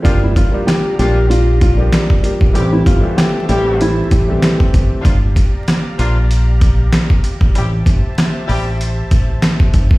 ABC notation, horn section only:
X:1
M:4/4
L:1/16
Q:"Swing 16ths" 1/4=96
K:Gdor
V:1 name="Horn section"
[F,B,DF] z4 z [F,B,DF]2 z8 | [G,CEG] z4 z [G,CEG]3 z6 z | [F,B,DF] z4 z [F,B,DF]2 z8 | [G,CEG] z4 z [G,CEG]2 z8 |]